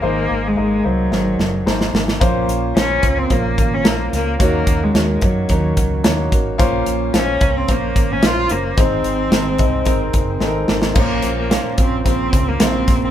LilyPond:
<<
  \new Staff \with { instrumentName = "Grand piano" } { \time 4/4 \key bes \minor \tempo 4 = 110 <bes ees' aes' c''>4 <bes ees' aes' bes'>8 <bes ees' aes' c''>8 <bes ees' aes' c''>4 <bes ees' aes' c''>4 | <bes des' f' c''>4 <bes des' f' c''>8 <bes des' f' c''>8 <bes des' f' c''>4 <bes des' f' bes'>4 | <bes ees' ges' des''>4 <bes ees' ges' des''>8 <bes ees' ges' des''>8 <bes ees' ges' des''>4 <bes ees' ges' des''>4 | <bes des' f' c''>4 <bes des' f' c''>8 <bes des' f' des''>8 <bes des' f' c''>4 <bes des' f' c''>4 |
<aes c' ees' c''>4 <aes c' ees' c''>8 <aes c' ees' ees''>8 <aes c' ees' bes'>4 <aes c' ees' a' bes'>4 | <bes des' f' c''>4 <bes des' f' des''>4 <des bes f' c''>4 <des bes f' c''>4 | }
  \new Staff \with { instrumentName = "Grand piano" } { \clef bass \time 4/4 \key bes \minor aes,4. r2 r8 | bes,4. r2 r8 | ees4. r2 r8 | bes,4. r2 r8 |
aes,4. r2 r8 | bes,4. r2 r8 | }
  \new Staff \with { instrumentName = "Steel-string acoustic guitar" } { \time 4/4 \key bes \minor r1 | <bes, f bes des' f' c''>4 <bes des' f' c''>4 <bes, f bes des' f' c''>4 <bes des' f' c''>4 | <ees des' ges' bes'>4 <ees des' ges' bes'>4 <ees des' ges' bes'>4 <ees des' ges' bes'>8 <des' ges' bes'>8 | <bes, bes des' f' c''>4 <bes des' f' c''>4 <bes, bes des' f' c''>4 <bes des' f'>8 <des' f' c''>8 |
<aes c' ees' c''>4 <aes c' ees' c''>4 <aes c' ees' c''>4 <aes c' ees' c''>8 <c' ees' c''>8 | <bes, bes des' f' c''>8 <des' f' c''>8 <bes, bes des' f' c''>8 <des' f' c''>8 <bes des' f' c''>8 <des' f' c''>8 <bes, bes des' f' c''>4 | }
  \new Staff \with { instrumentName = "Cello" } { \time 4/4 \key bes \minor bes8. aes8. ges4. r4 | r4 des'8. c'16 bes8. des'16 bes8 bes8 | bes8. aes8. ges4. r4 | r4 des'8. c'16 bes8. des'16 f'8 bes8 |
c'2. r4 | bes8. bes8. c'8 c'8. bes16 c'8. c'16 | }
  \new Staff \with { instrumentName = "Fingered electric bass" } { \clef bass \time 4/4 \key bes \minor aes,,8 aes,,8 aes,,8 c,8 aes,,8 ges,,8 aes,,8 aes,,8 | bes,,8 bes,,8 bes,,8 des,8 bes,,8 aes,,8 bes,,8 des,8 | ees,8 ees,8 ees,8 ges,8 ees,8 des,8 ees,8 aes,,8 | bes,,8 bes,,8 bes,,8 c,8 bes,,8 aes,,8 bes,,8 ges,,8 |
aes,,8 aes,,8 aes,,8 c,8 aes,,8 ges,,8 aes,,8 aes,,8 | bes,,8 bes,,8. r16 bes,,8 bes,,8 des,8 bes,,8 bes,,8 | }
  \new DrumStaff \with { instrumentName = "Drums" } \drummode { \time 4/4 r4 r4 sn8 sn8 sn16 sn16 sn16 sn16 | <hh bd>8 hh8 <hh sn>8 <hh bd>8 <hh bd>8 <hh bd>8 <hh sn>8 <hh sn>8 | <hh bd>8 <hh bd>8 <hh sn>8 <hh bd>8 <hh bd>8 <hh bd>8 <hh sn>8 <hh bd>8 | <hh bd>8 hh8 <hh sn>8 <hh bd>8 <hh bd>8 <hh bd>8 <hh sn>8 hh8 |
<hh bd>8 hh8 <hh sn>8 <hh bd>8 <hh bd>8 <hh bd>8 sn8 sn16 sn16 | <cymc bd>8 hh8 <hh sn>8 <hh bd>8 <hh bd>8 <hh bd>8 <hh sn>8 <hh bd sn>8 | }
>>